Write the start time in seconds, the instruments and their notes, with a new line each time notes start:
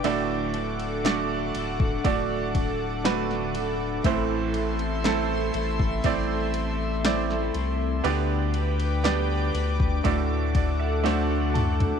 Already playing: grand piano G5, analog synth pad D6
0.04 sub bass D1, grand piano A2 A3 D4 F#4 D5, clean electric guitar D3 A3 D4 F#4 A4, analog synth pad A4 F#5, ride
0.54 clean electric guitar D4 F#4 A4, ride
0.80 ride
1.04 clean electric guitar D3 A3 D4 F#4 A4, grand piano A3 D4 F#4 D5, snare, ride
1.54 sub bass D1, clean electric guitar D4 F#4 A4, ride
1.80 kick
2.04 sub bass D1, clean electric guitar A3 D4 F#4 A4, grand piano A3 D4 F#4 D5, kick, ride
2.55 kick, ride
3.04 clean electric guitar D3 A3 D4 F#4 A4, grand piano A3 D4 F#4 B4, snare, ride
3.31 snare
3.54 clean electric guitar D4 F#4 A4, ride
4.04 sub bass A1, clean electric guitar A2 E3 A3 C4 E4 A4, grand piano A2 E3 A3 C4 E4 C5, analog synth pad E5 C6, kick, ride
4.54 clean electric guitar A3 C4 E4 A4, ride
4.79 ride
5.04 clean electric guitar A2 E3 A3 C4 E4 A4, grand piano A3 C4 E4 A4, snare, ride
5.54 sub bass A1, clean electric guitar A3 C4 E4 A4, ride
5.79 kick
6.04 sub bass A1, clean electric guitar A3 C4 E4 A4, grand piano A3 C4 E4 D5, kick, ride
6.54 ride
7.04 clean electric guitar A2 E3 A3 C4 E4 A4, grand piano A3 C4 E4 D5, snare, ride
7.30 snare
7.54 sub bass C2, clean electric guitar A3 C4 E4 A4, ride
8.04 sub bass D2, grand piano D3 B3 D4 G4 D5, clean electric guitar D3 G3 D4 G4 B4, analog synth pad B4 G5 D6, ride
8.54 clean electric guitar D4 G4 B4, ride
8.80 ride
9.04 clean electric guitar D3 G3 D4 G4 B4, grand piano B3 D4 G4 D5, snare, ride
9.54 sub bass D2, clean electric guitar D4 G4 B4, ride
9.80 kick
10.04 sub bass D2, grand piano A2 A3 D4 F#4 D5, clean electric guitar A3 D4 F#4 A4, analog synth pad A4 F#5, kick, ride
10.55 grand piano D5, kick, ride
10.79 grand piano E5
11.04 clean electric guitar D3 A3 D4 F#4 A4, grand piano A3 D4 F#4 C5 F#5, snare, ride
11.54 clean electric guitar D4 F#4 A4, grand piano A5, mid tom, ride
11.80 floor tom, ride